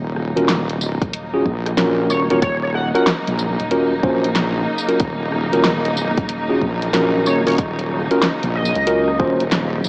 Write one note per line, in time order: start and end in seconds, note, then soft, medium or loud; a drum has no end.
0.00 0.34 D#1 medium
0.00 9.89 C#3 medium
0.00 9.89 F#3 medium
0.00 9.89 A#3 medium
0.00 9.89 D#4 medium
0.17 cross-stick soft
0.37 0.80 D#1 medium
0.37 0.51 C#4 medium
0.37 0.51 F4 medium
0.37 0.51 F#4 medium
0.37 0.51 A#4 medium
0.37 closed hi-hat medium
0.49 snare loud
0.49 closed hi-hat medium
0.70 closed hi-hat soft
0.80 0.98 D1 medium
0.80 tambourine medium
1.01 1.44 D#1 medium
1.01 kick loud
1.01 closed hi-hat soft
1.13 closed hi-hat medium
1.33 1.48 C#4 medium
1.33 1.48 F4 medium
1.33 1.48 F#4 medium
1.33 1.48 G#4 medium
1.45 2.08 A#1 medium
1.45 kick medium
1.66 cross-stick soft
1.66 closed hi-hat soft
1.77 2.26 C#4 medium
1.77 2.25 F4 medium
1.77 2.25 F#4 medium
1.77 2.25 A#4 medium
1.77 snare loud
1.77 closed hi-hat medium
2.10 2.27 D#1 loud
2.10 2.23 C#5 medium
2.10 tambourine medium
2.30 2.92 D#1 loud
2.30 2.39 C#4 medium
2.30 2.39 F4 medium
2.30 2.39 F#4 medium
2.30 2.39 A#4 medium
2.30 2.38 C#5 medium
2.30 closed hi-hat soft
2.42 2.55 C#5 medium
2.42 kick loud
2.42 closed hi-hat medium
2.63 2.70 C#5 medium
2.74 2.88 F#5 medium
2.74 cross-stick soft
2.95 3.09 C#4 medium
2.95 3.09 F4 medium
2.95 3.09 F#4 medium
2.95 3.09 A#4 loud
2.95 3.03 F#5 medium
2.95 closed hi-hat medium
3.07 snare loud
3.07 closed hi-hat medium
3.27 3.56 A#1 loud
3.27 closed hi-hat soft
3.39 tambourine medium
3.59 4.02 D#1 medium
3.59 closed hi-hat soft
3.71 3.93 C#4 medium
3.71 3.93 F4 medium
3.71 3.93 F#4 medium
3.71 3.93 A#4 medium
3.71 closed hi-hat medium
3.92 cross-stick soft
4.00 4.66 A#1 medium
4.00 kick loud
4.00 cross-stick soft
4.04 4.26 C#4 medium
4.04 4.26 F4 medium
4.04 4.26 F#4 medium
4.04 4.26 C5 medium
4.10 cross-stick soft
4.24 closed hi-hat soft
4.36 snare loud
4.36 closed hi-hat medium
4.78 tambourine medium
4.88 4.97 C#4 medium
4.88 4.97 F4 medium
4.88 4.97 F#4 medium
4.88 4.97 A#4 medium
4.88 closed hi-hat medium
5.00 5.50 D#1 medium
5.00 kick loud
5.00 closed hi-hat medium
5.32 cross-stick soft
5.53 6.14 D#1 loud
5.53 5.67 C#4 medium
5.53 5.67 F4 medium
5.53 5.67 F#4 medium
5.53 5.67 A#4 medium
5.53 closed hi-hat medium
5.64 snare loud
5.64 closed hi-hat medium
5.85 closed hi-hat soft
5.97 tambourine medium
6.17 6.60 D#1 loud
6.17 kick loud
6.17 closed hi-hat soft
6.29 closed hi-hat medium
6.49 6.64 C#4 medium
6.49 6.64 F4 medium
6.49 6.64 F#4 medium
6.49 6.64 G#4 medium
6.62 7.24 A#1 loud
6.62 kick medium
6.82 cross-stick soft
6.82 closed hi-hat soft
6.90 7.41 C#4 medium
6.90 7.42 F4 medium
6.90 7.42 F#4 medium
6.90 7.42 A#4 medium
6.90 cross-stick soft
6.90 snare loud
6.90 closed hi-hat medium
7.01 cross-stick soft
7.26 7.43 D#1 loud
7.26 7.40 C#5 medium
7.26 tambourine medium
7.46 8.08 D#1 medium
7.46 7.55 C#4 medium
7.46 7.55 F4 medium
7.46 7.55 F#4 medium
7.46 7.55 A#4 medium
7.46 7.54 C#5 medium
7.46 closed hi-hat medium
7.46 closed hi-hat soft
7.50 closed hi-hat soft
7.52 closed hi-hat soft
7.55 closed hi-hat soft
7.56 closed hi-hat soft
7.58 kick loud
7.58 closed hi-hat medium
7.79 closed hi-hat soft
7.90 cross-stick soft
7.95 cross-stick soft
8.01 cross-stick soft
8.06 cross-stick soft
8.11 8.25 C#4 medium
8.11 8.25 F4 medium
8.11 8.25 F#4 medium
8.11 8.26 A#4 loud
8.11 closed hi-hat soft
8.22 snare loud
8.22 closed hi-hat medium
8.43 8.72 A#1 loud
8.43 closed hi-hat soft
8.55 9.20 D#5 loud
8.65 tambourine medium
8.75 9.18 C#2 loud
8.75 closed hi-hat soft
8.87 9.09 C#4 medium
8.87 9.09 F4 medium
8.87 9.09 F#4 medium
8.87 9.09 A#4 medium
8.87 closed hi-hat medium
9.08 cross-stick soft
9.19 9.37 D#1 loud
9.19 9.42 C#4 medium
9.19 9.42 F4 medium
9.19 9.42 F#4 medium
9.19 9.42 C5 loud
9.19 kick loud
9.40 9.82 D#1 medium
9.40 closed hi-hat soft
9.52 snare loud
9.52 closed hi-hat medium
9.84 9.89 F#1 loud
9.84 tambourine medium